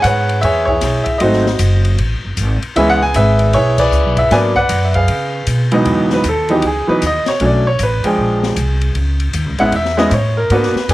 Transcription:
Already playing: G#4
0.02 G#2 B4 C#5 F#5, kick, hi-hat pedal, ride
0.29 ride
0.41 E2 G#4 C#5 E5, kick, ride
0.65 E4 G#4 C#5, kick
0.81 B1, snare, hi-hat pedal, ride
1.04 E5, muted upright bass stroke, kick, ride
1.18 G#1 F#3 A3 C4 D#4 F#4 C5 D#5, kick, ride
1.33 snare
1.46 snare
1.59 F#1, kick, hi-hat pedal, ride
1.85 ride
1.98 A1, kick, ride
2.12 G#1
2.24 F#1
2.37 G#1, kick, hi-hat pedal, ride
2.62 ride
2.76 C#2 E3 G#3 B3 C#4 G#4 B4 E5, kick, ride
2.90 F#5
3.02 G#5
3.14 G#1 G#4 B4 E5, kick, hi-hat pedal, ride
3.39 ride
3.53 B1 E4 G#4 C#5, kick, ride
3.78 G#4 B4 D5, kick, crash
3.91 C#2, hi-hat pedal
4.05 B1
4.17 G#1 E5, kick, ride
4.31 G#2 F#3 A#3 B3 D4 B4 D5 G#5, snare, ride
4.56 B4 D5 F#5, kick
4.69 F#2, hi-hat pedal, ride
4.85 E5
4.94 G#4 B4 F5, kick, ride
5.08 C#3, kick, ride
5.47 B2, kick, hi-hat pedal, ride
5.71 C#2 E3 F#3 B3 D#4, ride
5.85 E2, kick, ride
6.10 B4, snare
6.24 D#2, kick, hi-hat pedal, ride
6.29 A4
6.49 E3 F#3 B3 D#4 G4, ride
6.62 C#2, kick, ride
6.67 G#4
6.87 E3 F#3 B3 D#4 B4, muted upright bass stroke
7.02 D#2, kick, hi-hat pedal, ride
7.07 D#5
7.26 C#5, muted upright bass stroke, snare, ride
7.40 B1 F#3 A3 C#4 D4, kick, ride
7.45 D5
7.67 C#5
7.79 A1, kick, hi-hat pedal, ride
7.83 B4
8.04 F3 G#3 D4 G#4 G5, muted upright bass stroke, ride
8.18 A#1, kick
8.43 snare
8.56 C2, kick, hi-hat pedal, ride
8.81 ride
8.95 C#2, kick, ride
9.20 ride
9.33 D#2, kick, hi-hat pedal, ride
9.46 C#2
9.58 A1 G#3 B3 C#4 E4 F#5, ride
9.72 E2 E5, kick, ride
9.85 snare
9.97 G#3 B3 C#4 E4 D#5, snare
10.09 A2 C5, kick, hi-hat pedal, ride
10.14 C#5
10.37 A#4
10.50 G#2 A#3 B3 D4 F#4 B4, kick, ride
10.63 snare
10.74 muted upright bass stroke, snare
10.88 F#2 A#3 B3 D4 G#4, kick, hi-hat pedal, ride

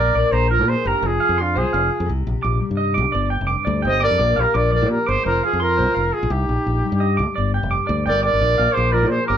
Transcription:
Already playing: A#1 A#2 D4 A#4 D5
0.14 A#1 A#4 D5
0.32 A#1 D4 G#4 C5 A#5
0.49 F3 F4 A#4
0.59 A#2
0.68 F4 G#4 C5
0.85 F#1 D4 G4 A#4 A#5
1.01 F1 F3, muted clean electric guitar stroke
1.05 F4 G#4
1.20 F4 F5
1.29 F2
1.38 C4 D4 F4 C6
1.55 C2 C4 F4 G#4 C5
1.73 F1 F4 F5
1.90 F4
2.00 F2
2.06 C2 C3
2.27 A#1 G4
2.43 A#1 D4 D6
2.60 G3
2.71 G2
2.77 D#4 D#5
2.94 C2 D4 D6
3.12 G1 G2 D5
3.30 G5
3.41 F1
3.47 C4 D6
3.65 D2 G3 D5
3.82 G1 D4 C5 G5
3.87 D#5
4.00 A#3 D5 D6
4.04 A#4
4.11 F2 C4
4.18 A#1 A#2 D5
4.36 A#1 F4 G4 F5
4.41 A#4
4.54 A#1 D4 A#4 D5 D6
4.71 F3 D5
4.76 A#4
4.82 A#2
4.91 F4 G4 A#4
5.06 G1 D4 G#4 C5 D6
5.24 F1 F3 F4 A#4 C5
5.43 F4 G#4 F5
5.53 F2
5.60 F4 A#4 C6
5.77 C2 C4 C5
5.94 F1 G#4 F5
6.13 F4 G#4
6.23 A#1
6.30 C2 D#4 G4, muted nylon-string guitar stroke
6.49 A#1 D#4
6.66 A#1
6.84 G3
6.92 G2
7.00 D#5, muted nylon-string guitar stroke
7.17 D2 D4 D6
7.36 G1 G2 D5
7.54 G4 G5
7.63 F1
7.71 C4 D6
7.87 D2 G3 D5
8.06 G1 A#4 D5 G5
8.23 A#4 D5 D6, muted nylon-string guitar stroke
8.33 G#1
8.41 A#1 A#2 D5
8.58 A#1 A#4 F5
8.74 A#1 D4 G#4 C5 D6
8.92 F3 F4 A#4 D5
9.03 A#2
9.09 F4 G#4 C5
9.26 G1 D4 G4 A#4 D6

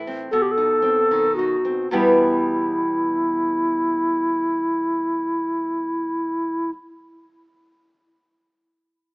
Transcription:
Already playing: A2 E4
0.07 C4
0.31 B2 A4
0.42 G4
0.51 A4
0.58 D#4
0.82 C4
1.11 D#3
1.36 D#4 F#4
1.65 C4
1.91 E2 B2 G3 B3 E4 F#4 G4

